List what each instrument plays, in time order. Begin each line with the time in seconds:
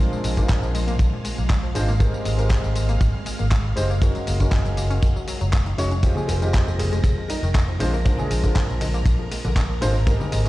Already playing: string machine G#3 F5
0.00 grand piano G#3 C4 D4 F4 A#4
0.12 synth arpeggio sound F3, tambourine
0.24 fingered electric bass A#1, synth arpeggio sound G#3, open hi-hat, tambourine
0.37 grand piano G#3 C4 D4 F4 A#4, synth arpeggio sound A#3, kick, closed hi-hat, tambourine
0.49 synth arpeggio sound D3, kick, clap, closed hi-hat, tambourine
0.63 fingered electric bass A#1, synth arpeggio sound F3, tambourine
0.75 synth arpeggio sound G#3, open hi-hat, tambourine
0.88 synth arpeggio sound A#3, closed hi-hat, tambourine
0.99 fingered electric bass A#1, synth arpeggio sound D3, kick, closed hi-hat, tambourine
1.13 synth arpeggio sound F3
1.25 synth arpeggio sound G#3, open hi-hat, tambourine
1.38 fingered electric bass A#1, synth arpeggio sound A#3, closed hi-hat, tambourine
1.50 synth arpeggio sound D3, kick, clap, closed hi-hat, tambourine
1.63 synth arpeggio sound F3
1.75 fingered electric bass G#1, grand piano G#3 C4 D4 F4 C5, synth arpeggio sound G#3, open hi-hat, tambourine
1.88 synth arpeggio sound A#3, tambourine
1.99 synth arpeggio sound D#3, grand piano G#3 C4 D#4 G4 A#4, kick, closed hi-hat, tambourine
2.14 synth arpeggio sound G3, tambourine
2.25 fingered electric bass G#1, synth arpeggio sound G#3, open hi-hat, tambourine
2.37 grand piano G#3 C4 D#4 G4 A#4, synth arpeggio sound A#3, closed hi-hat, tambourine
2.50 synth arpeggio sound D#3, kick, clap, closed hi-hat, tambourine
2.64 fingered electric bass G#1, synth arpeggio sound G3, tambourine
2.76 synth arpeggio sound G#3, open hi-hat, tambourine
2.89 synth arpeggio sound A#3, closed hi-hat, tambourine
3.01 fingered electric bass G#1, synth arpeggio sound D#3, kick, closed hi-hat, tambourine
3.14 synth arpeggio sound G3
3.26 synth arpeggio sound G#3, open hi-hat, tambourine
3.39 fingered electric bass G#1, synth arpeggio sound A#3, closed hi-hat, tambourine
3.51 synth arpeggio sound D#3, kick, clap, closed hi-hat, tambourine
3.65 synth arpeggio sound G3
3.76 fingered electric bass F#1, grand piano G#3 C4 D#4 G4 C5, synth arpeggio sound G#3, open hi-hat, tambourine
3.90 synth arpeggio sound A#3, tambourine
4.01 synth arpeggio sound D#3, grand piano G#3 C#4 D#4 F#4 A#4, kick, closed hi-hat, tambourine
4.15 synth arpeggio sound F#3, closed hi-hat, tambourine
4.27 fingered electric bass F#1, synth arpeggio sound A#3, open hi-hat, tambourine
4.40 grand piano G#3 C#4 D#4 F#4 A#4, synth arpeggio sound C#4, kick, closed hi-hat, tambourine
4.52 synth arpeggio sound D#3, kick, clap, closed hi-hat, tambourine
4.65 fingered electric bass F#1, synth arpeggio sound F#3, closed hi-hat, tambourine
4.77 synth arpeggio sound A#3, open hi-hat, tambourine
4.90 synth arpeggio sound C#4, closed hi-hat, tambourine
5.02 fingered electric bass F#1, synth arpeggio sound D#3, kick, closed hi-hat, tambourine
5.16 synth arpeggio sound F#3, tambourine
5.28 synth arpeggio sound F#3, open hi-hat, tambourine
5.41 fingered electric bass F#1, synth arpeggio sound F#3, closed hi-hat, tambourine
5.53 synth arpeggio sound A#3, kick, clap, closed hi-hat, tambourine
5.66 synth arpeggio sound D#3, closed hi-hat
5.78 fingered electric bass F1, synth arpeggio sound D#3, grand piano G#3 C#4 D#4 F#4 C#5, open hi-hat, tambourine
5.91 synth arpeggio sound C#4, closed hi-hat, tambourine
6.03 synth arpeggio sound D#3, grand piano G#3 C4 D#4 F4 G4, string machine A#4 A#5, kick, closed hi-hat, ride, tambourine, high bongo
6.16 synth arpeggio sound F3, analog synth lead G#4, tambourine, high conga
6.28 fingered electric bass F1, synth arpeggio sound G3, open hi-hat, ride, tambourine, high bongo
6.41 synth arpeggio sound D#3, grand piano G#3 C4 D#4 F4 G4, closed hi-hat, tambourine
6.54 synth arpeggio sound D#3, kick, clap, closed hi-hat, ride, tambourine
6.67 fingered electric bass F1, synth arpeggio sound F3, tambourine, high bongo
6.79 synth arpeggio sound G3, analog synth lead G#4, open hi-hat, ride, tambourine, high conga, low conga
6.93 synth arpeggio sound G#3, closed hi-hat, tambourine, high bongo
7.04 fingered electric bass F1, synth arpeggio sound D#3, kick, closed hi-hat, ride, tambourine
7.18 synth arpeggio sound F3
7.29 synth arpeggio sound G3, analog synth lead D#4, open hi-hat, ride, tambourine, high bongo
7.43 fingered electric bass F1, synth arpeggio sound D#3, closed hi-hat, tambourine
7.55 synth arpeggio sound D#3, kick, clap, closed hi-hat, ride, tambourine, high bongo
7.68 synth arpeggio sound F3
7.79 fingered electric bass A#1, grand piano G#3 C4 D4 F4 C5, synth arpeggio sound G#3, open hi-hat, ride, tambourine, high conga
7.93 synth arpeggio sound A#3, tambourine, high bongo
8.05 synth arpeggio sound D3, grand piano G#3 C4 D4 F4 A#4, kick, closed hi-hat, ride, tambourine
8.18 synth arpeggio sound F3, analog synth lead G#4, tambourine, high bongo, high conga
8.30 fingered electric bass A#1, synth arpeggio sound G#3, open hi-hat, ride, tambourine
8.43 synth arpeggio sound D3, grand piano G#3 C4 D4 F4 A#4, kick, closed hi-hat, tambourine
8.55 synth arpeggio sound D3, kick, clap, closed hi-hat, ride, tambourine, high bongo
8.69 fingered electric bass A#1, synth arpeggio sound F3, tambourine
8.81 synth arpeggio sound G#3, open hi-hat, ride, tambourine, high bongo, high conga, low conga
8.94 synth arpeggio sound A#3, closed hi-hat, tambourine
9.06 fingered electric bass A#1, synth arpeggio sound D3, kick, closed hi-hat, ride, tambourine
9.19 synth arpeggio sound F3, high bongo
9.31 synth arpeggio sound G#3, open hi-hat, ride, tambourine
9.44 fingered electric bass A#1, synth arpeggio sound D3, closed hi-hat, tambourine, high bongo
9.56 synth arpeggio sound D3, kick, clap, closed hi-hat, ride, tambourine
9.70 synth arpeggio sound F3
9.81 fingered electric bass G#1, grand piano G#3 C4 D4 F4 C5, synth arpeggio sound G#3, open hi-hat, ride, tambourine, high bongo, low conga
9.95 synth arpeggio sound A#3, tambourine
10.06 synth arpeggio sound D#3, grand piano G#3 C4 D#4 G4 A#4, kick, closed hi-hat, ride, tambourine, high bongo
10.20 synth arpeggio sound G3, tambourine, high conga
10.32 fingered electric bass G#1, synth arpeggio sound G#3, open hi-hat, ride, tambourine
10.45 synth arpeggio sound D#3, grand piano G#3 C4 D#4, closed hi-hat, high bongo